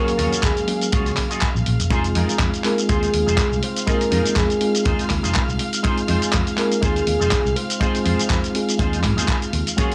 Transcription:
Already playing: reed electric piano F#3 A#3 C#4 G#4 F5, soft synth lead A#4, string section F5 F6
0.08 open hi-hat, shaker
0.17 fingered electric bass D#2, clean electric guitar F4 F#4 G#4 C#5, open hi-hat
0.32 muted fingered electric bass stroke, closed hi-hat, shaker
0.43 fingered electric bass D#2, soft synth lead G#4, kick, clap, closed hi-hat, shaker
0.57 closed hi-hat, shaker
0.67 reed electric piano F#3 A#3 C#4 G#4 F5, muted clean electric guitar stroke, open hi-hat
0.81 closed hi-hat, shaker
0.91 fingered electric bass C#2, clean electric guitar F4 F#4 G#4 C#5, kick, closed hi-hat, shaker
1.06 closed hi-hat, shaker
1.17 kick, clap, open hi-hat
1.30 clean electric guitar F4 F#4 G#4 D#5, closed hi-hat, shaker
1.41 kick, clap, closed hi-hat, shaker
1.55 fingered electric bass A#1, shaker
1.65 fingered electric bass A#1, muted clean electric guitar stroke, open hi-hat
1.80 fingered electric bass F1, closed hi-hat, shaker
1.90 reed electric piano G#3 C4 D#4 F4 G#4, clean electric guitar D#4 F4 G#4 C5, string section F5 F6, kick, closed hi-hat, shaker
2.04 closed hi-hat, shaker
2.15 fingered electric bass F2, clean electric guitar D#4 F4 G#4 A#4, open hi-hat
2.29 muted fingered electric bass stroke, closed hi-hat, shaker
2.39 fingered electric bass F2, kick, clap, closed hi-hat, shaker
2.54 closed hi-hat, shaker
2.64 reed electric piano G#3 C4 D#4 F4 G#4, soft synth lead A#4, muted clean electric guitar stroke, clap, open hi-hat
2.78 closed hi-hat, shaker
2.88 fingered electric bass D#2, clean electric guitar D#4 F4 G#4 C5, soft synth lead G#4, kick, closed hi-hat, shaker
3.03 closed hi-hat, shaker
3.14 fingered electric bass D#2, open hi-hat
3.26 fingered electric bass F1, clean electric guitar D#4 F4 G#4 C5, shaker
3.38 kick, clap, closed hi-hat, shaker
3.52 fingered electric bass C2, shaker
3.62 soft synth lead C5, muted clean electric guitar stroke, open hi-hat
3.77 closed hi-hat, shaker
3.86 reed electric piano G#3 C4 D#4 F4 G#4, clean electric guitar D#4 F4 G#4 D#5, soft synth lead A#4, kick, closed hi-hat, shaker
4.01 open hi-hat, shaker
4.11 fingered electric bass F2, clean electric guitar D#4 F4 G#4 A#4, open hi-hat
4.26 muted fingered electric bass stroke, closed hi-hat, shaker
4.36 fingered electric bass F2, soft synth lead G#4, kick, clap, closed hi-hat, shaker
4.50 closed hi-hat, shaker
4.60 reed electric piano G#3 C4 D#4 F4 G#4, muted clean electric guitar stroke, open hi-hat
4.75 closed hi-hat, shaker
4.85 fingered electric bass D#2, clean electric guitar D#4 F4 G#4 C5, kick, closed hi-hat, shaker
4.99 muted fingered electric bass stroke, closed hi-hat, shaker
5.10 fingered electric bass D#2, kick, clap, open hi-hat
5.23 fingered electric bass F1, clean electric guitar D#4 F4 G#4 C5, closed hi-hat, shaker
5.35 kick, clap, closed hi-hat, shaker
5.49 fingered electric bass C2, shaker
5.58 muted clean electric guitar stroke, open hi-hat
5.73 closed hi-hat, shaker
5.83 reed electric piano G#3 C4 D#4 F4 G#4, clean electric guitar D#4 F4 G#4 C5, kick, closed hi-hat, shaker
5.98 closed hi-hat, shaker
6.08 fingered electric bass F2, clean electric guitar D#4 F4 G#4 C5, open hi-hat
6.22 muted fingered electric bass stroke, closed hi-hat, shaker
6.33 fingered electric bass F2, kick, clap, closed hi-hat, shaker
6.47 closed hi-hat, shaker
6.57 reed electric piano G#3 C4 D#4 F4 G#4, soft synth lead A#4, muted clean electric guitar stroke, clap, open hi-hat
6.72 closed hi-hat, shaker
6.81 fingered electric bass D#2, clean electric guitar D#4 F4 G#4 C5, soft synth lead G#4, kick, closed hi-hat, shaker
6.96 closed hi-hat, shaker
7.07 fingered electric bass D#2, open hi-hat
7.20 fingered electric bass F1, clean electric guitar D#4 F4 G#4 C5, shaker
7.31 kick, clap, closed hi-hat, shaker
7.46 fingered electric bass C2, shaker
7.55 soft synth lead C5, muted clean electric guitar stroke, open hi-hat
7.70 closed hi-hat, shaker
7.80 reed electric piano G#3 C4 D#4 F4 G#4, clean electric guitar D#4 F4 G#4 C5, kick, closed hi-hat, shaker
7.95 open hi-hat, shaker
8.04 fingered electric bass F2, clean electric guitar D#4 F4 G#4 C5, open hi-hat
8.19 closed hi-hat, shaker
8.30 fingered electric bass F2, kick, clap, closed hi-hat, shaker
8.44 closed hi-hat, shaker
8.54 reed electric piano G#3 C4 D#4 F4 G#4, muted clean electric guitar stroke, open hi-hat
8.69 closed hi-hat, shaker
8.78 fingered electric bass D#2, clean electric guitar D#4 F4 G#4 C5, kick, closed hi-hat, shaker
8.93 closed hi-hat, shaker
9.04 fingered electric bass G#2, kick, clap, open hi-hat
9.17 fingered electric bass D#2, clean electric guitar D#4 F4 G#4 C5, closed hi-hat, shaker
9.28 kick, clap, closed hi-hat, shaker
9.42 closed hi-hat, shaker
9.52 fingered electric bass D#2, muted clean electric guitar stroke, open hi-hat
9.67 closed hi-hat, shaker
9.77 reed electric piano F#3 A#3 C#4 G#4 F5, clean electric guitar F4 F#4 G#4 C#5, string section F#4 F6, kick, closed hi-hat, shaker
9.92 closed hi-hat

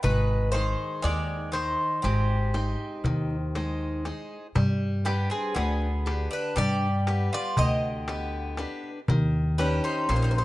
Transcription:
0.03 upright bass G#1, bouzouki D#3 B4, steel-string acoustic guitar G#3, darbuka dum
0.29 darbuka tek
0.52 bouzouki D#3 C5, steel-string acoustic guitar D#4 G#4 C5, darbuka tek
0.79 darbuka tek
1.02 upright bass D#2, steel-string acoustic guitar D#3, bouzouki G#3 D5, darbuka tek
1.30 darbuka tek
1.52 bouzouki D#3 C5, steel-string acoustic guitar D#4 C5, darbuka tek
2.02 upright bass G#1, bouzouki C3 G4, steel-string acoustic guitar G#3, darbuka tek
2.54 steel-string acoustic guitar D#4 C5, darbuka tek
3.04 upright bass D#2, steel-string acoustic guitar D#3, darbuka dum
3.30 darbuka tek
3.55 steel-string acoustic guitar G#3 D#4 C5, darbuka tek
3.81 darbuka tek
4.05 steel-string acoustic guitar D#4 G#4 C5, darbuka tek
4.55 upright bass G2, steel-string acoustic guitar G3, darbuka dum
5.05 bouzouki B3 G4, steel-string acoustic guitar D4 B4 G5, darbuka tek
5.30 bouzouki C4 G#4, darbuka tek
5.55 upright bass D2, steel-string acoustic guitar D3, bouzouki B3 G#4, darbuka tek
5.82 darbuka tek
6.06 steel-string acoustic guitar D4 G4 B4, darbuka tek
6.31 bouzouki D4 B4
6.56 upright bass G2, steel-string acoustic guitar G3, bouzouki G4 D5, darbuka tek, darbuka dum
7.07 steel-string acoustic guitar B3 G4 B4, darbuka tek
7.33 bouzouki F4 D5
7.57 upright bass D2, steel-string acoustic guitar D3, bouzouki G4 D#5, darbuka dum
8.08 steel-string acoustic guitar B3 G4 B4, darbuka tek
8.33 darbuka tek
8.57 steel-string acoustic guitar D4 G4 B4, darbuka tek
8.84 darbuka tek
9.08 upright bass D#2, steel-string acoustic guitar D#3, darbuka dum
9.58 steel-string acoustic guitar C#4 D#4 G4, bouzouki D4 B4, darbuka tek
9.84 bouzouki D#4 C5, darbuka tek
10.09 upright bass A#1, steel-string acoustic guitar A#3, bouzouki D#4 C5, darbuka tek
10.16 bouzouki D#4 C5
10.22 bouzouki D#4 C5
10.31 bouzouki D#4 C5
10.38 bouzouki D#4 C5

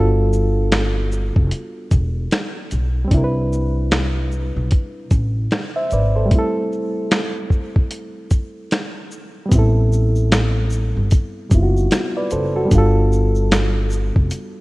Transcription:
Already playing: upright bass G1, reed electric piano G3 B3 D4 F4 F#4
0.00 reed electric piano A4
0.33 shaker
0.72 finger snap, snare, closed hi-hat
1.12 shaker
1.36 upright bass F1, kick
1.51 closed hi-hat
1.91 upright bass E1, kick, closed hi-hat, shaker
2.31 finger snap, snare, closed hi-hat
2.71 upright bass B1, closed hi-hat, shaker
3.05 reed electric piano G3 C4
3.11 upright bass C2, reed electric piano D4 E4, kick, closed hi-hat
3.17 reed electric piano A#4
3.24 reed electric piano B4
3.53 shaker
3.91 finger snap, snare, closed hi-hat
4.32 shaker
4.56 upright bass B1
4.71 kick, closed hi-hat
5.11 upright bass A1, kick, closed hi-hat, shaker
5.51 finger snap, snare, closed hi-hat
5.76 reed electric piano C5 E5
5.91 upright bass G#1, reed electric piano B4 D5, closed hi-hat, shaker
6.16 reed electric piano A4 C5
6.26 reed electric piano G3 A3
6.31 reed electric piano C4, kick, closed hi-hat
6.35 reed electric piano E4 A4
6.72 shaker
7.11 finger snap, snare, closed hi-hat
7.50 kick, shaker
7.76 kick
7.91 closed hi-hat
8.31 kick, closed hi-hat, shaker
8.71 finger snap, snare, closed hi-hat
9.11 shaker
9.46 reed electric piano G3 B3
9.51 upright bass A1, reed electric piano C4 E4, kick, closed hi-hat, shaker
9.59 reed electric piano A4
9.92 shaker
10.15 shaker
10.32 finger snap, snare, closed hi-hat, shaker
10.70 shaker
10.72 shaker
10.97 upright bass G1
11.11 kick, closed hi-hat, shaker
11.50 upright bass F#1, reed electric piano G3 B3 C4, kick, closed hi-hat, shaker
11.54 reed electric piano E4 F4
11.63 reed electric piano F#4
11.77 shaker
11.91 finger snap, snare, closed hi-hat, shaker
12.17 reed electric piano B4 D5
12.30 upright bass F#1, reed electric piano A4 C5, closed hi-hat, shaker
12.56 reed electric piano F#4 A4
12.65 reed electric piano G3 B3
12.71 upright bass G1, reed electric piano D4 F4, kick, closed hi-hat, shaker
12.78 reed electric piano A4
13.12 shaker
13.35 shaker
13.51 finger snap, snare, closed hi-hat, shaker
13.90 shaker
13.92 shaker
14.16 upright bass F1, kick
14.31 closed hi-hat, shaker

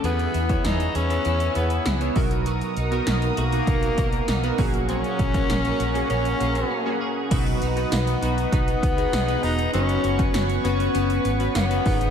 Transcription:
Already playing: clean electric guitar A3 C#4
0.03 fingered electric bass E2, clean electric guitar E3 G#4, synth keys E3 B3 E4 G#4 B4, tenor saxophone B3, analog synth pad B4 G#5 E6, closed hi-hat
0.19 closed hi-hat
0.34 fingered electric bass E2, clean electric guitar E4, closed hi-hat
0.49 synth keys B3 E4 G#4 C#5, kick, closed hi-hat
0.65 fingered electric bass E2, clean electric guitar B3, tenor saxophone D#4, snare, closed hi-hat
0.80 closed hi-hat
0.95 fingered electric bass E2, tenor saxophone C#4, clean electric guitar G#4, closed hi-hat
1.09 synth keys B3 E4 G#4 B4, closed hi-hat
1.25 fingered electric bass E2, clean electric guitar E4, closed hi-hat
1.40 closed hi-hat
1.55 fingered electric bass E2, synth keys B3 E4 G#4 B4, clean electric guitar B3, tenor saxophone B3, closed hi-hat
1.70 closed hi-hat
1.86 fingered electric bass C#2, clean electric guitar E4, snare, closed hi-hat
2.00 synth keys B3 E4 G#4 C#5, closed hi-hat
2.15 fingered electric bass B1, synth keys B2 B3 D#4 F#4 A#4, clean electric guitar F#3, analog synth pad A#4 F#5 A#5 D#6, kick, open hi-hat
2.31 closed hi-hat
2.46 clean electric guitar F#3 F#4, closed hi-hat
2.61 closed hi-hat
2.77 fingered electric bass B1, clean electric guitar D#4, closed hi-hat
2.91 synth keys B3 D#4 F#4 A#4, closed hi-hat
3.07 fingered electric bass B1, clean electric guitar A#3, snare, closed hi-hat
3.22 closed hi-hat
3.37 fingered electric bass B1, tenor saxophone A#3, clean electric guitar F#4, closed hi-hat
3.52 synth keys B2 D#4 F#4 A#4, closed hi-hat
3.67 fingered electric bass B1, clean electric guitar D#4, kick, closed hi-hat
3.83 closed hi-hat
3.97 fingered electric bass B1, synth keys B2 D#4 F#4 A#4, clean electric guitar A#3, kick, closed hi-hat
4.13 closed hi-hat
4.28 fingered electric bass B1, clean electric guitar D#4, snare, closed hi-hat
4.43 synth keys B3 D#4 F#4 A#4, closed hi-hat
4.58 fingered electric bass A#1, synth keys A#2 A#3 C#4 F#4 G#4, clean electric guitar F#3, analog synth pad A#4 G#5 C#6, kick, open hi-hat
4.74 closed hi-hat
4.89 clean electric guitar F#3 G#4, tenor saxophone C#4, closed hi-hat
5.04 closed hi-hat
5.19 fingered electric bass A#1, clean electric guitar C#4, kick, closed hi-hat
5.34 synth keys A#3 C#4 F#4 A#4, kick, closed hi-hat
5.49 fingered electric bass A#1, clean electric guitar A#3, snare, closed hi-hat
5.65 closed hi-hat
5.80 fingered electric bass A#1, clean electric guitar G#4, closed hi-hat
5.94 synth keys A#3 C#4 F#4 G#4, closed hi-hat
6.10 fingered electric bass A#1, tenor saxophone C#4, clean electric guitar C#4, closed hi-hat
6.25 closed hi-hat
6.40 fingered electric bass A#1, synth keys A#3 C#4 F#4 G#4, clean electric guitar A#3, closed hi-hat
6.55 closed hi-hat
6.71 clean electric guitar C#4
6.85 synth keys A#3 C#4 F#4 G#4
7.01 clean electric guitar G#4
7.30 fingered electric bass B1, synth keys B2 B3 D#4 F#4 B4, clean electric guitar F#3 F#4, analog synth pad B4 D#5 F#5 D#6, kick, closed hi-hat, crash
7.47 closed hi-hat
7.62 fingered electric bass B1, clean electric guitar D#4, closed hi-hat
7.76 synth keys B3 D#4 F#4 B4, closed hi-hat
7.92 fingered electric bass B1, clean electric guitar B3, tenor saxophone B3, snare, closed hi-hat, tambourine
8.07 closed hi-hat
8.21 fingered electric bass B1, synth keys B3 D#4 F#4 B4, clean electric guitar F#4, closed hi-hat
8.38 closed hi-hat
8.52 fingered electric bass B1, synth keys B3 D#4 F#4 B4, tenor saxophone B3, clean electric guitar D#4, kick, closed hi-hat
8.68 closed hi-hat
8.83 fingered electric bass C#2, clean electric guitar B3, kick, closed hi-hat
8.97 synth keys B3 D#4 F#4 G#4, closed hi-hat
9.13 fingered electric bass B1, clean electric guitar D#4, snare, closed hi-hat, tambourine
9.27 synth keys B3 D#4 F#4 B4, closed hi-hat
9.43 fingered electric bass E1, clean electric guitar B3, tenor saxophone D#4, open hi-hat
9.59 closed hi-hat
9.73 fingered electric bass F#1, clean electric guitar F#3 F#4, synth keys B3 C#4 F#4 B4, tenor saxophone C#4, analog synth pad C#5 C#6, closed hi-hat
9.89 closed hi-hat
10.04 fingered electric bass F#1, clean electric guitar C#4, closed hi-hat
10.18 synth keys B3 C#4 F#4 B4, kick, closed hi-hat
10.34 fingered electric bass F#1, clean electric guitar B3, snare, closed hi-hat, tambourine
10.50 closed hi-hat
10.64 fingered electric bass F#1, synth keys B3 C#4 F#4 B4, clean electric guitar F#4, closed hi-hat
10.80 closed hi-hat
10.94 fingered electric bass F#1, synth keys B3 C#4 F#4 B4, clean electric guitar C#4, closed hi-hat
11.10 closed hi-hat
11.25 fingered electric bass G#1, clean electric guitar B3, closed hi-hat
11.39 synth keys B3 C#4 F#4 B4, closed hi-hat
11.55 fingered electric bass F#1, tenor saxophone B3, clean electric guitar C#4, snare, closed hi-hat, tambourine
11.70 synth keys B3 C#4 F#4 B4, closed hi-hat
11.85 fingered electric bass G#1, synth keys G#2 B3 D#4 G#4 B4, clean electric guitar D#3, analog synth pad D#5 G#5 D#6, kick, open hi-hat
12.01 closed hi-hat

